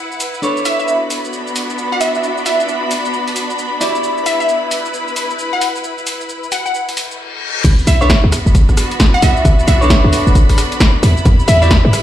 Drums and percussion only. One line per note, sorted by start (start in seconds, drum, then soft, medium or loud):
0.12 cabasa soft
0.20 open hi-hat medium
0.20 cabasa medium
0.34 cabasa soft
0.43 cabasa soft
0.57 cabasa soft
0.65 open hi-hat medium
0.65 cabasa medium
0.80 cabasa soft
0.88 cabasa soft
1.10 open hi-hat medium
1.10 cabasa medium
1.25 cabasa soft
1.33 cabasa soft
1.47 cabasa soft
1.56 open hi-hat medium
1.56 cabasa medium
1.70 cabasa soft
1.78 cabasa soft
2.01 open hi-hat loud
2.01 cabasa medium
2.15 cabasa soft
2.23 cabasa soft
2.37 cabasa soft
2.46 open hi-hat loud
2.46 cabasa medium
2.60 cabasa soft
2.68 cabasa soft
2.91 open hi-hat loud
2.91 cabasa medium
3.05 cabasa soft
3.14 cabasa soft
3.28 open hi-hat medium
3.28 cabasa soft
3.36 open hi-hat loud
3.36 cabasa medium
3.50 cabasa soft
3.59 cabasa soft
3.81 open hi-hat loud
3.81 cabasa medium
3.95 cabasa soft
4.04 cabasa soft
4.18 cabasa soft
4.26 open hi-hat loud
4.26 cabasa medium
4.40 cabasa soft
4.49 cabasa soft
4.71 open hi-hat loud
4.71 cabasa medium
4.85 cabasa soft
4.94 cabasa soft
5.08 cabasa soft
5.16 open hi-hat loud
5.16 cabasa medium
5.30 cabasa soft
5.39 cabasa soft
5.61 open hi-hat loud
5.61 cabasa medium
5.76 cabasa soft
5.84 cabasa soft
5.98 cabasa soft
6.07 open hi-hat loud
6.07 cabasa medium
6.21 cabasa soft
6.29 cabasa soft
6.43 cabasa soft
6.52 open hi-hat loud
6.52 cabasa medium
6.66 cabasa soft
6.74 cabasa soft
6.89 open hi-hat medium
6.89 cabasa soft
6.97 open hi-hat loud
6.97 cabasa medium
7.11 cabasa soft
7.64 kick loud
7.64 closed hi-hat medium
7.64 crash loud
7.64 cabasa soft
7.79 cabasa soft
7.87 open hi-hat loud
7.87 cabasa medium
8.01 cabasa soft
8.10 kick loud
8.10 snare loud
8.10 closed hi-hat medium
8.10 cabasa soft
8.32 cross-stick medium
8.32 open hi-hat loud
8.32 cabasa medium
8.46 cabasa soft
8.55 kick loud
8.55 closed hi-hat medium
8.55 cabasa soft
8.69 kick medium
8.69 cross-stick soft
8.69 cabasa soft
8.77 cross-stick medium
8.77 open hi-hat loud
8.77 cabasa medium
8.91 closed hi-hat medium
8.91 cabasa soft
9.00 kick loud
9.00 snare loud
9.00 closed hi-hat medium
9.00 cabasa soft
9.22 open hi-hat loud
9.22 cabasa medium
9.37 cabasa soft
9.45 kick loud
9.45 closed hi-hat medium
9.45 cabasa soft
9.59 cabasa soft
9.68 open hi-hat loud
9.68 cabasa medium
9.82 cabasa soft
9.90 kick loud
9.90 snare loud
9.90 closed hi-hat medium
9.90 cabasa soft
10.13 open hi-hat loud
10.13 cabasa medium
10.27 cabasa soft
10.35 kick loud
10.35 closed hi-hat medium
10.35 cabasa soft
10.49 kick medium
10.49 cross-stick soft
10.49 open hi-hat medium
10.49 cabasa soft
10.58 cross-stick medium
10.58 open hi-hat loud
10.58 cabasa medium
10.72 closed hi-hat medium
10.72 cabasa soft
10.80 kick loud
10.80 snare loud
10.80 closed hi-hat medium
10.80 cabasa soft
11.03 open hi-hat loud
11.03 cabasa medium
11.17 cabasa soft
11.25 kick loud
11.25 closed hi-hat medium
11.25 cabasa soft
11.40 cabasa soft
11.48 open hi-hat loud
11.48 cabasa medium
11.62 cabasa soft
11.71 kick loud
11.71 snare loud
11.71 closed hi-hat medium
11.71 cabasa soft
11.93 cross-stick medium
11.93 open hi-hat loud
11.93 cabasa medium